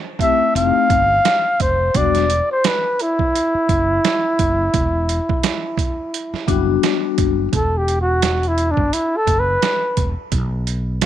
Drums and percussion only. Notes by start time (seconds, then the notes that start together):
0.19 kick, closed hi-hat
0.56 closed hi-hat
0.90 kick, closed hi-hat
1.25 snare, closed hi-hat
1.60 kick, closed hi-hat
1.94 kick, closed hi-hat
2.15 snare, closed hi-hat
2.30 closed hi-hat
2.64 snare, closed hi-hat
2.99 closed hi-hat
3.19 kick
3.36 closed hi-hat
3.69 kick, closed hi-hat
4.05 snare, closed hi-hat
4.39 kick, closed hi-hat
4.74 kick, closed hi-hat
5.09 closed hi-hat
5.29 kick
5.44 snare, closed hi-hat
5.77 kick, closed hi-hat
6.14 closed hi-hat
6.34 snare
6.48 kick, closed hi-hat
6.83 snare, closed hi-hat
7.18 kick, closed hi-hat
7.53 kick, closed hi-hat
7.88 closed hi-hat
8.22 snare, closed hi-hat
8.43 closed hi-hat
8.58 closed hi-hat
8.77 kick
8.93 closed hi-hat
9.27 kick, closed hi-hat
9.62 snare, closed hi-hat
9.97 kick, closed hi-hat
10.32 kick, closed hi-hat
10.67 closed hi-hat
11.02 snare, closed hi-hat